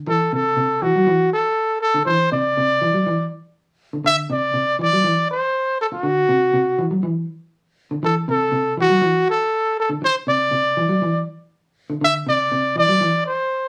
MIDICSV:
0, 0, Header, 1, 4, 480
1, 0, Start_track
1, 0, Tempo, 497512
1, 70, Time_signature, 4, 2, 24, 8
1, 13200, End_track
2, 0, Start_track
2, 0, Title_t, "Trumpet"
2, 0, Program_c, 0, 56
2, 87, Note_on_c, 0, 69, 88
2, 302, Note_off_c, 0, 69, 0
2, 332, Note_on_c, 0, 69, 85
2, 798, Note_on_c, 0, 66, 96
2, 812, Note_off_c, 0, 69, 0
2, 1274, Note_off_c, 0, 66, 0
2, 1286, Note_on_c, 0, 69, 84
2, 1724, Note_off_c, 0, 69, 0
2, 1750, Note_on_c, 0, 69, 100
2, 1973, Note_off_c, 0, 69, 0
2, 1982, Note_on_c, 0, 72, 109
2, 2209, Note_off_c, 0, 72, 0
2, 2242, Note_on_c, 0, 74, 101
2, 3156, Note_off_c, 0, 74, 0
2, 3918, Note_on_c, 0, 76, 125
2, 4023, Note_off_c, 0, 76, 0
2, 4164, Note_on_c, 0, 74, 99
2, 4603, Note_off_c, 0, 74, 0
2, 4654, Note_on_c, 0, 74, 116
2, 5088, Note_off_c, 0, 74, 0
2, 5123, Note_on_c, 0, 72, 91
2, 5563, Note_off_c, 0, 72, 0
2, 5610, Note_on_c, 0, 69, 93
2, 5661, Note_off_c, 0, 69, 0
2, 5734, Note_on_c, 0, 66, 96
2, 6645, Note_off_c, 0, 66, 0
2, 7761, Note_on_c, 0, 69, 93
2, 7866, Note_off_c, 0, 69, 0
2, 8009, Note_on_c, 0, 69, 97
2, 8447, Note_off_c, 0, 69, 0
2, 8499, Note_on_c, 0, 66, 106
2, 8932, Note_off_c, 0, 66, 0
2, 8976, Note_on_c, 0, 69, 94
2, 9410, Note_off_c, 0, 69, 0
2, 9453, Note_on_c, 0, 69, 93
2, 9556, Note_off_c, 0, 69, 0
2, 9692, Note_on_c, 0, 72, 108
2, 9795, Note_off_c, 0, 72, 0
2, 9922, Note_on_c, 0, 74, 105
2, 10838, Note_off_c, 0, 74, 0
2, 11619, Note_on_c, 0, 76, 117
2, 11720, Note_off_c, 0, 76, 0
2, 11853, Note_on_c, 0, 74, 101
2, 12290, Note_off_c, 0, 74, 0
2, 12331, Note_on_c, 0, 74, 120
2, 12768, Note_off_c, 0, 74, 0
2, 12798, Note_on_c, 0, 72, 91
2, 13200, Note_off_c, 0, 72, 0
2, 13200, End_track
3, 0, Start_track
3, 0, Title_t, "Clean electric guitar"
3, 0, Program_c, 1, 27
3, 70, Note_on_c, 1, 52, 93
3, 276, Note_off_c, 1, 52, 0
3, 314, Note_on_c, 1, 48, 82
3, 519, Note_off_c, 1, 48, 0
3, 547, Note_on_c, 1, 48, 84
3, 755, Note_off_c, 1, 48, 0
3, 793, Note_on_c, 1, 52, 84
3, 898, Note_off_c, 1, 52, 0
3, 924, Note_on_c, 1, 54, 81
3, 1020, Note_off_c, 1, 54, 0
3, 1031, Note_on_c, 1, 52, 91
3, 1237, Note_off_c, 1, 52, 0
3, 1875, Note_on_c, 1, 50, 68
3, 1974, Note_off_c, 1, 50, 0
3, 1991, Note_on_c, 1, 52, 99
3, 2196, Note_off_c, 1, 52, 0
3, 2239, Note_on_c, 1, 48, 87
3, 2441, Note_off_c, 1, 48, 0
3, 2484, Note_on_c, 1, 48, 79
3, 2683, Note_off_c, 1, 48, 0
3, 2717, Note_on_c, 1, 52, 89
3, 2820, Note_off_c, 1, 52, 0
3, 2838, Note_on_c, 1, 54, 73
3, 2935, Note_off_c, 1, 54, 0
3, 2957, Note_on_c, 1, 52, 90
3, 3160, Note_off_c, 1, 52, 0
3, 3794, Note_on_c, 1, 50, 64
3, 3890, Note_off_c, 1, 50, 0
3, 3902, Note_on_c, 1, 50, 90
3, 4111, Note_off_c, 1, 50, 0
3, 4145, Note_on_c, 1, 48, 91
3, 4353, Note_off_c, 1, 48, 0
3, 4379, Note_on_c, 1, 48, 80
3, 4589, Note_off_c, 1, 48, 0
3, 4622, Note_on_c, 1, 52, 84
3, 4731, Note_off_c, 1, 52, 0
3, 4758, Note_on_c, 1, 54, 77
3, 4855, Note_off_c, 1, 54, 0
3, 4864, Note_on_c, 1, 52, 94
3, 5072, Note_off_c, 1, 52, 0
3, 5820, Note_on_c, 1, 50, 95
3, 6030, Note_off_c, 1, 50, 0
3, 6067, Note_on_c, 1, 48, 84
3, 6274, Note_off_c, 1, 48, 0
3, 6306, Note_on_c, 1, 48, 82
3, 6513, Note_off_c, 1, 48, 0
3, 6547, Note_on_c, 1, 52, 82
3, 6655, Note_off_c, 1, 52, 0
3, 6667, Note_on_c, 1, 54, 71
3, 6769, Note_off_c, 1, 54, 0
3, 6783, Note_on_c, 1, 52, 86
3, 6992, Note_off_c, 1, 52, 0
3, 7632, Note_on_c, 1, 50, 68
3, 7732, Note_off_c, 1, 50, 0
3, 7746, Note_on_c, 1, 52, 96
3, 7953, Note_off_c, 1, 52, 0
3, 7988, Note_on_c, 1, 48, 85
3, 8195, Note_off_c, 1, 48, 0
3, 8219, Note_on_c, 1, 48, 83
3, 8430, Note_off_c, 1, 48, 0
3, 8465, Note_on_c, 1, 52, 83
3, 8574, Note_off_c, 1, 52, 0
3, 8586, Note_on_c, 1, 54, 79
3, 8689, Note_off_c, 1, 54, 0
3, 8698, Note_on_c, 1, 52, 82
3, 8910, Note_off_c, 1, 52, 0
3, 9547, Note_on_c, 1, 50, 73
3, 9650, Note_off_c, 1, 50, 0
3, 9907, Note_on_c, 1, 48, 82
3, 10115, Note_off_c, 1, 48, 0
3, 10144, Note_on_c, 1, 48, 85
3, 10353, Note_off_c, 1, 48, 0
3, 10392, Note_on_c, 1, 52, 93
3, 10498, Note_off_c, 1, 52, 0
3, 10508, Note_on_c, 1, 54, 77
3, 10611, Note_off_c, 1, 54, 0
3, 10632, Note_on_c, 1, 52, 92
3, 10838, Note_off_c, 1, 52, 0
3, 11478, Note_on_c, 1, 50, 73
3, 11576, Note_off_c, 1, 50, 0
3, 11590, Note_on_c, 1, 50, 94
3, 11797, Note_off_c, 1, 50, 0
3, 11834, Note_on_c, 1, 48, 90
3, 12039, Note_off_c, 1, 48, 0
3, 12077, Note_on_c, 1, 48, 80
3, 12281, Note_off_c, 1, 48, 0
3, 12308, Note_on_c, 1, 52, 87
3, 12417, Note_off_c, 1, 52, 0
3, 12436, Note_on_c, 1, 54, 76
3, 12535, Note_off_c, 1, 54, 0
3, 12552, Note_on_c, 1, 52, 92
3, 12758, Note_off_c, 1, 52, 0
3, 13200, End_track
4, 0, Start_track
4, 0, Title_t, "Muted clean electric guitar strokes"
4, 5710, Note_on_c, 9, 29, 66
4, 5807, Note_off_c, 9, 29, 0
4, 9666, Note_on_c, 9, 29, 93
4, 9763, Note_off_c, 9, 29, 0
4, 13200, End_track
0, 0, End_of_file